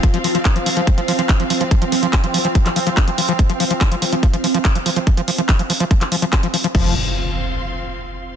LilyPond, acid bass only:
\new Staff \with { instrumentName = "Acid bass" } { \clef bass \time 4/4 \key c \phrygian \tempo 4 = 143 f16 f16 f16 f16 f16 f16 f16 f16 f16 f16 f16 f16 f16 f16 f16 f16 | f16 f16 f16 f16 f16 f16 f16 f16 f16 f16 f16 f16 f16 f16 f16 f16 | f16 f16 f16 f16 f16 f16 f16 f16 f16 f16 f16 f16 f16 f16 f16 f16 | f16 f16 f16 f16 f16 f16 f16 f16 f16 f16 f16 f16 f16 f16 f16 f16 |
f8 r2. r8 | }